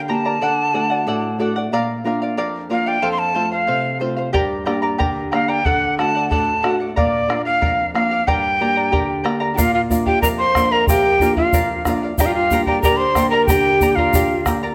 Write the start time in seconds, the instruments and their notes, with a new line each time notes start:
Already playing: nylon-string guitar D3
0.08 nylon-string guitar A#3 D4 G4, charango A#4 D5 G5 A#5, quena A5
0.25 charango A#4 D5 A#5
0.41 nylon-string guitar D3, charango A4 D5 F#5
0.74 nylon-string guitar A3 D4 F#4, charango A4 D5 F#5
0.90 charango D5 F#5
1.07 nylon-string guitar A2, charango A4 D5 F#5
1.39 nylon-string guitar A3 D4 F#4, charango A4 D5 F#5
1.56 charango D5 F#5
1.72 nylon-string guitar A#2, charango A#4 D5 F5
2.04 nylon-string guitar A#3 D4 F4, charango A#4 D5 F5
2.22 charango D5 F5
2.37 nylon-string guitar F2, charango A#4 D5 F5
2.70 nylon-string guitar A#3 D4 F4, charango A#4 D5 F5, quena F5
2.86 charango D5 F5, quena G5
3.02 nylon-string guitar F2, charango A4 C5 F5
3.12 quena C6
3.19 quena A5
3.35 nylon-string guitar A3 C4 F4, charango A4 C5 F5
3.52 charango C5 F5, quena F5
3.67 nylon-string guitar C3, charango A4 C5 F5
4.00 nylon-string guitar A3 C4 F4, charango A4 C5 F5
4.17 charango C5 F5
4.33 nylon-string guitar G2, charango G4 A#4 D5 G5 A#5, bombo low
4.66 nylon-string guitar A#3 D4 G4, charango A#4 D5 G5 A#5, bombo rim
4.82 charango A#4 D5 A#5
4.98 nylon-string guitar D3, charango G4 A#4 D5 G5 A#5, bombo low
5.32 nylon-string guitar A#3 D4 G4, charango A#4 D5 G5 A#5, quena F5, bombo rim
5.48 charango A#4 D5 A#5, quena G5
5.65 nylon-string guitar D3, charango A4 D5 F#5, quena F#5, bombo low
5.98 nylon-string guitar A3 D4 F#4, charango A4 D5 F#5, quena A5, bombo rim
6.15 charango D5 F#5
6.30 nylon-string guitar A2, charango A4 D5 F#5, quena A5, bombo low
6.63 nylon-string guitar A3 D4 F#4, charango A4 D5 F#5, bombo rim
6.80 charango D5 F#5
6.96 nylon-string guitar A#2, charango A#4 D5 F5, quena D5, bombo low
7.29 nylon-string guitar A#3 D4 F4, charango A#4 D5 F5, bombo rim
7.45 charango D5 F5, quena F5
7.61 nylon-string guitar F2, charango A#4 D5 F5, bombo low
7.94 nylon-string guitar A#3 D4 F4, charango A#4 D5 F5, quena F5, bombo rim
8.11 charango D5 F5
8.27 nylon-string guitar G2, charango G4 A#4 D5 G5 A#5, quena G5, bombo low
8.60 nylon-string guitar A#3 D4 G4, charango A#4 D5 G5 A#5
8.76 charango A#4 D5 A#5
8.92 nylon-string guitar D3, charango G4 A#4 D5 G5 A#5, bombo low
9.24 nylon-string guitar A#3 D4 G4, charango A#4 D5 G5 A#5, bombo rim
9.40 charango A#4 D5 A#5
9.54 nylon-string guitar A#2, pan flute F4 G4, charango A#4, quena F5 G5
9.58 charango D5 F5, bombo low, shaker
9.74 pan flute F4, quena F5
9.90 nylon-string guitar A#3 D4 F4, charango A#4 D5 F5, bombo low, shaker
10.06 pan flute G4, charango D5 F5, quena G5, bombo low
10.22 nylon-string guitar F2, pan flute A#4, charango A#4 D5 F5, quena A#5, bombo low, shaker
10.38 pan flute C5, quena C6
10.55 nylon-string guitar A#3 D4 F4, charango A#4 D5 F5, bombo rim, bombo low, shaker
10.72 pan flute A#4, charango D5 F5, quena A#5
10.87 nylon-string guitar F2, pan flute G4, charango A#4 D5 F5, quena G5, bombo low, shaker
11.20 nylon-string guitar A#3 D4 F4, charango A#4 D5 F5, bombo low, shaker
11.36 pan flute F4, charango D5 F5, quena F5, bombo low
11.53 nylon-string guitar F2, charango A#4 D5 F5, bombo low, shaker
11.85 nylon-string guitar A#3 D4 F4, charango A#4 D5 F5, bombo rim, bombo low, shaker
12.03 charango D5 F5
12.18 nylon-string guitar G2, pan flute F4, charango G4 A#4 D5 G5 A#5, quena D5 F5, bombo low, shaker
12.23 pan flute D4, quena F5
12.27 pan flute F4
12.34 pan flute F4, quena F5
12.50 nylon-string guitar A#3 D4 G4, charango A#4 D5 G5 A#5, bombo low, shaker
12.65 pan flute G4, charango D5 A#5, quena G5, bombo low
12.69 charango A#4
12.82 nylon-string guitar D3, charango G4 A#4 D5 G5 A#5, pan flute A#4, quena A#5, bombo low, shaker
12.97 pan flute C5, quena C6
13.15 nylon-string guitar A#3 D4 G4, charango A#4 D5 G5 A#5, bombo rim, bombo low, shaker
13.30 pan flute A#4, charango A#4 D5 A#5, quena A#5
13.46 nylon-string guitar D3, pan flute G4, charango G4 A#4 G5, quena G5, bombo low, shaker
13.50 charango D5 A#5
13.80 nylon-string guitar A#3 D4 G4, charango A#4 D5 G5 A#5, bombo low, shaker
13.96 pan flute F4, charango A#4 D5 A#5, quena F5, bombo low
14.14 nylon-string guitar D3, charango G4 A#4 D5 G5 A#5, bombo low, shaker
14.45 nylon-string guitar A#3 D4 G4, charango A#4 D5 G5 A#5, bombo rim, bombo low, shaker
14.63 charango A#4 D5 A#5